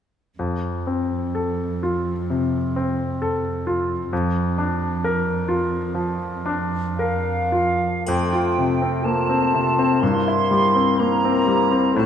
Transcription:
0.37 cello section F2, grand piano F2
0.87 grand piano C4
1.35 grand piano A4
1.83 grand piano F4
2.30 grand piano C3
2.76 grand piano C4
3.22 grand piano A4
3.67 grand piano F4
4.13 cello section F2, grand piano F2
4.58 grand piano D4
5.04 grand piano A#4
5.48 grand piano F4
5.95 grand piano F3
6.46 grand piano D4
6.97 grand piano A#4, flute section F5
7.52 grand piano F4
8.07 grand piano F2, bassoon A3, clarinet F4, cor anglais C5, flute section G5, triangle
8.33 grand piano F4
8.58 grand piano C3
8.82 grand piano C4
9.03 bassoon A3, grand piano A#3, clarinet F4, cor anglais C5, flute section A5
9.29 grand piano C4
9.54 grand piano C3
9.79 grand piano C4
10.02 grand piano G2, bassoon A#3, clarinet E4, cor anglais C5, flute section C6
10.28 grand piano E4
10.51 grand piano G3
10.75 grand piano C4
10.99 bassoon A#3, grand piano A#3, clarinet E4, cor anglais C5, flute section A#5
11.25 grand piano C4
11.47 grand piano G3
11.71 grand piano C4
11.94 grand piano A2, bassoon A3, clarinet F4, cor anglais C5, flute section A5

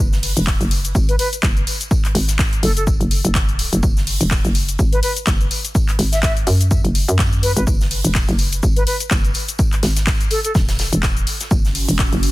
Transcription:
0.00 fm bass F#1
0.13 snare, shaker
0.23 open hi-hat
0.37 fm bass E1, closed hi-hat, shaker
0.46 kick, snare, clap, open hi-hat, tambourine, shaker
0.61 fm bass F#1, closed hi-hat, shaker
0.71 open hi-hat, tambourine
0.85 closed hi-hat, shaker
0.95 fm bass G#1, kick, tambourine, shaker
1.09 flute B4, closed hi-hat, shaker
1.19 flute B4, open hi-hat, tambourine
1.33 closed hi-hat, shaker
1.42 fm bass F#1, kick, snare, clap, tambourine, shaker
1.57 closed hi-hat, shaker
1.67 open hi-hat, tambourine
1.81 closed hi-hat, shaker
1.91 kick, tambourine, shaker
2.05 clap, closed hi-hat, shaker
2.15 fm bass G#1, open hi-hat, tambourine
2.28 snare, closed hi-hat, shaker
2.39 kick, snare, clap, open hi-hat, tambourine, shaker
2.53 closed hi-hat, shaker
2.63 fm bass F#1, flute A4, open hi-hat, tambourine
2.77 flute A4, closed hi-hat, shaker
2.87 kick, tambourine, shaker
3.00 fm bass F#1, closed hi-hat, shaker
3.11 open hi-hat, tambourine
3.25 fm bass F#1, closed hi-hat, shaker
3.35 kick, snare, clap, tambourine, shaker
3.49 closed hi-hat, shaker
3.59 open hi-hat, tambourine
3.73 fm bass F#1, closed hi-hat, shaker
3.83 fm bass F#1, kick, tambourine, shaker
3.97 snare, shaker
4.07 open hi-hat
4.21 fm bass E1, closed hi-hat, shaker
4.31 kick, snare, clap, open hi-hat, tambourine, shaker
4.45 fm bass F#1, closed hi-hat, shaker
4.55 open hi-hat, tambourine
4.69 closed hi-hat, shaker
4.79 fm bass G#1, kick, tambourine, shaker
4.93 flute B4, closed hi-hat, shaker
5.03 flute B4, open hi-hat, tambourine
5.17 closed hi-hat, shaker
5.27 fm bass F#1, kick, snare, clap, tambourine, shaker
5.41 closed hi-hat, shaker
5.51 open hi-hat, tambourine
5.65 closed hi-hat, shaker
5.75 kick, tambourine, shaker
5.88 clap, closed hi-hat, shaker
5.99 fm bass G#1, open hi-hat, tambourine
6.12 flute E5, snare, closed hi-hat, shaker
6.23 flute E5, kick, snare, clap, open hi-hat, tambourine, shaker
6.37 closed hi-hat, shaker
6.47 fm bass F#2, open hi-hat, tambourine
6.61 closed hi-hat, shaker
6.71 kick, tambourine, shaker
6.84 fm bass F#1, closed hi-hat, shaker
6.95 open hi-hat, tambourine
7.08 fm bass F#2, closed hi-hat, shaker
7.19 kick, snare, clap, tambourine, shaker
7.33 closed hi-hat, shaker
7.43 flute B4, open hi-hat, tambourine
7.57 fm bass G#1, flute B4, closed hi-hat, shaker
7.67 fm bass F#1, kick, tambourine, shaker
7.81 snare, shaker
7.91 open hi-hat
8.04 fm bass E1, closed hi-hat, shaker
8.15 kick, snare, clap, open hi-hat, tambourine, shaker
8.29 fm bass F#1, closed hi-hat, shaker
8.38 open hi-hat, tambourine
8.52 closed hi-hat, shaker
8.63 fm bass G#1, kick, tambourine, shaker
8.76 flute B4, closed hi-hat, shaker
8.87 flute B4, open hi-hat, tambourine
9.00 closed hi-hat, shaker
9.11 fm bass F#1, kick, snare, clap, tambourine, shaker
9.25 closed hi-hat, shaker
9.34 open hi-hat, tambourine
9.49 closed hi-hat, shaker
9.59 kick, tambourine, shaker
9.72 clap, closed hi-hat, shaker
9.83 fm bass G#1, snare, open hi-hat, tambourine
9.97 snare, closed hi-hat, shaker
10.07 kick, snare, clap, open hi-hat, tambourine, shaker
10.21 closed hi-hat, shaker
10.30 flute A4, open hi-hat, tambourine
10.45 flute A4, closed hi-hat, shaker
10.55 fm bass E1, kick, snare, tambourine, shaker
10.68 snare, closed hi-hat, tambourine, shaker
10.79 snare, open hi-hat, tambourine
10.93 fm bass E1, closed hi-hat, shaker
11.03 kick, snare, clap, tambourine, shaker
11.17 closed hi-hat, shaker
11.27 open hi-hat, tambourine
11.41 snare, closed hi-hat, shaker
11.51 fm bass F#1, ambient pad C#4, kick, tambourine, shaker
11.60 ambient pad F#4
11.65 snare, shaker
11.75 open hi-hat
11.88 fm bass E1, closed hi-hat, shaker
11.99 kick, snare, clap, open hi-hat, tambourine, shaker
12.13 fm bass F#1, closed hi-hat, shaker
12.23 open hi-hat, tambourine

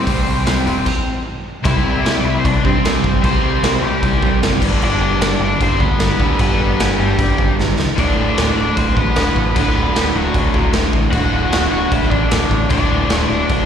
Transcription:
Already playing: overdriven electric guitar C4 C5
0.07 picked electric bass C2, overdriven electric guitar C3 G3 C4, kick, open hi-hat
0.26 picked electric bass C2, open hi-hat
0.46 picked electric bass C2, overdriven electric guitar C3 G3 C4, snare, open hi-hat
0.66 picked electric bass E1, overdriven electric guitar C3 G3 C4, open hi-hat
0.86 kick, crash
1.65 picked electric bass C2, overdriven electric guitar C3 G3 C4 E4 E5, kick, crash
1.86 picked electric bass C2
2.05 picked electric bass C2, snare, crash
2.21 picked electric bass C2, overdriven electric guitar D5
2.25 overdriven electric guitar E4 E5
2.39 overdriven electric guitar C5
2.44 picked electric bass C2, overdriven electric guitar D4 D5, kick, crash
2.64 picked electric bass G2, overdriven electric guitar C3 G3 C4 C5, kick
2.84 picked electric bass C2, overdriven electric guitar C3 G3 C4, snare, crash
3.04 picked electric bass G1, kick
3.23 picked electric bass C2, overdriven electric guitar C3 G3 C4 C5, kick, crash
3.42 picked electric bass C2
3.63 picked electric bass C2, snare, crash
3.82 picked electric bass C2, overdriven electric guitar G3 G4
4.02 picked electric bass C2, kick, crash
4.21 picked electric bass C2, overdriven electric guitar C3 G3 C4, kick
4.41 picked electric bass F#1, overdriven electric guitar C3 G3 C4, snare, crash
4.61 picked electric bass G1, overdriven electric guitar G2 D3 G3, kick, crash
4.82 picked electric bass G1, overdriven electric guitar D4 D5, crash
5.00 picked electric bass G1
5.21 picked electric bass G1, snare, crash
5.40 picked electric bass G1
5.44 overdriven electric guitar D4 D5
5.60 picked electric bass G1, overdriven electric guitar G2 D3 G3 C4 C5, kick, crash
5.79 picked electric bass D2, overdriven electric guitar G2 D3 G3 B3 B4, kick
5.99 picked electric bass G1, snare, crash
6.19 picked electric bass D1, overdriven electric guitar G2 D3 G3, kick
6.39 picked electric bass G1, overdriven electric guitar B3 B4, kick, crash
6.59 picked electric bass G1
6.79 picked electric bass G1, snare, crash
7.00 picked electric bass G1, overdriven electric guitar G3 G4
7.18 picked electric bass G1, overdriven electric guitar G2 D3 G3, kick, crash
7.38 picked electric bass G1, overdriven electric guitar G2 D3 G3, kick
7.59 picked electric bass G1, snare
7.79 picked electric bass C#2, snare
7.97 picked electric bass D1, overdriven electric guitar D2 A2 D3 D4 D5, kick, crash
8.17 picked electric bass D1
8.37 picked electric bass D1, snare, crash
8.57 picked electric bass D1, overdriven electric guitar D4 D5
8.77 picked electric bass D1, overdriven electric guitar C4 C5, kick, crash
8.96 picked electric bass A1, overdriven electric guitar D2 A2 D3 B3 B4, kick
9.16 picked electric bass D1, overdriven electric guitar D2 A2 D3, snare, crash
9.36 picked electric bass A1, kick
9.55 picked electric bass D1, overdriven electric guitar D2 A2 D3 B3 B4, kick, crash
9.76 picked electric bass D1
9.96 picked electric bass D1, snare, crash
10.15 picked electric bass D1, overdriven electric guitar F#3 F#4
10.34 picked electric bass D1, kick, crash
10.54 picked electric bass D1, overdriven electric guitar D2 A2 D3, kick
10.73 picked electric bass D1, overdriven electric guitar D2 A2 D3, snare, crash
10.93 picked electric bass A1, kick
11.12 picked electric bass D1, overdriven electric guitar D2 A2 D3 F#4 F#5, kick, crash
11.32 picked electric bass D1
11.52 picked electric bass D1, snare, crash
11.72 picked electric bass D1, overdriven electric guitar F#4 F#5
11.92 picked electric bass D1, overdriven electric guitar E4 E5, kick, crash
12.10 picked electric bass A1, overdriven electric guitar D2 A2 D3 D4 D5, kick
12.30 picked electric bass D1, overdriven electric guitar D2 A2 D3, snare, crash
12.51 picked electric bass A1, kick
12.70 picked electric bass D1, overdriven electric guitar D2 A2 D3 D4 D5, kick, crash
12.90 picked electric bass D1
13.10 picked electric bass D1, snare, crash
13.18 overdriven electric guitar C5
13.29 picked electric bass D1, overdriven electric guitar D4 D5
13.50 picked electric bass D1, kick, crash

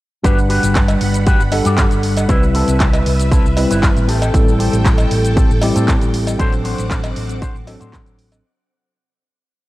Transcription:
0.23 fingered electric bass G1, tine electric piano G3 D4 B4 F#5, string machine G3 F#5 B5, clean electric guitar F#4 G4 B4, kick, closed hi-hat, shaker
0.38 shaker
0.49 clean electric guitar F#4 G4 B4, open hi-hat
0.63 fingered electric bass G1, closed hi-hat, shaker
0.75 kick, clap, closed hi-hat, shaker
0.88 closed hi-hat, cowbell, shaker
1.00 fingered electric bass G1, muted clean electric guitar stroke, open hi-hat
1.14 closed hi-hat, shaker
1.26 clean electric guitar F#4 G4 B4, kick, closed hi-hat, shaker
1.40 fingered electric bass G1, shaker
1.51 tine electric piano G3 D4 A4 F#5, muted clean electric guitar stroke, open hi-hat, cowbell
1.65 fingered electric bass G2, clean electric guitar F#4 G4 D5, closed hi-hat, shaker
1.78 kick, clap, closed hi-hat, shaker
1.91 fingered electric bass G1, closed hi-hat, shaker
2.03 muted clean electric guitar stroke, open hi-hat
2.17 closed hi-hat, cowbell, shaker
2.28 fingered electric bass C2, tine electric piano G3 C4 E4 B4, clean electric guitar C4 E4 B4, string machine B4 E5, kick, closed hi-hat, shaker
2.43 shaker
2.54 clean electric guitar C4 E4 A4, open hi-hat
2.68 fingered electric bass C2, closed hi-hat, shaker
2.80 kick, clap, closed hi-hat, shaker
2.93 closed hi-hat, cowbell, shaker
3.05 fingered electric bass C2, muted clean electric guitar stroke, open hi-hat
3.19 closed hi-hat, shaker
3.31 clean electric guitar C4 E4 A4, kick, closed hi-hat, shaker
3.45 fingered electric bass C2, shaker
3.57 tine electric piano G3 C4 E4 B4, muted clean electric guitar stroke, open hi-hat, cowbell
3.70 fingered electric bass G1, clean electric guitar C4 E4 B4, closed hi-hat, shaker
3.83 kick, clap, closed hi-hat, shaker
3.96 fingered electric bass A1, closed hi-hat, shaker
4.08 clean electric guitar C4 G4 A4, string machine A4 G5, open hi-hat
4.22 closed hi-hat, cowbell, shaker
4.34 fingered electric bass A1, tine electric piano G3 C4 E4 A4, kick, closed hi-hat, shaker
4.48 shaker
4.59 clean electric guitar C4 G4 A4, open hi-hat
4.73 fingered electric bass A1, closed hi-hat, shaker
4.85 kick, clap, closed hi-hat, shaker
4.98 closed hi-hat, cowbell, shaker
5.10 fingered electric bass A1, muted clean electric guitar stroke, open hi-hat
5.25 closed hi-hat, shaker
5.36 clean electric guitar C4 G4 A4, kick, closed hi-hat, shaker
5.50 fingered electric bass A1, shaker
5.62 tine electric piano G3 C4 E4 G4, muted clean electric guitar stroke, open hi-hat, cowbell
5.75 fingered electric bass A2, clean electric guitar C4 G4 A4, closed hi-hat, shaker
5.88 kick, clap, closed hi-hat, shaker
6.01 fingered electric bass A1, closed hi-hat, shaker
6.13 muted clean electric guitar stroke, open hi-hat
6.27 closed hi-hat, cowbell, shaker
6.38 tine electric piano F#3 C4 D4 A4, string machine C4 F#5 D6, clean electric guitar D4 F#4 C5, kick, closed hi-hat, shaker
6.53 closed hi-hat, shaker
6.64 clean electric guitar D4 F#4 C5, open hi-hat
6.78 fingered electric bass A1, closed hi-hat, shaker
6.91 kick, clap, closed hi-hat, shaker
7.04 closed hi-hat, cowbell, shaker
7.15 fingered electric bass A1, muted clean electric guitar stroke, open hi-hat
7.29 closed hi-hat, shaker
7.41 clean electric guitar D4 F#4 C5, kick, closed hi-hat, shaker
7.55 fingered electric bass A1, shaker
7.67 tine electric piano F#3 C4 D4 A4, muted clean electric guitar stroke, open hi-hat, cowbell
7.79 fingered electric bass A2, clean electric guitar D4 F#4 C5, closed hi-hat, shaker
7.93 kick, clap, closed hi-hat, shaker
8.06 fingered electric bass A1, closed hi-hat, shaker
8.18 muted clean electric guitar stroke, open hi-hat
8.32 closed hi-hat, cowbell, shaker

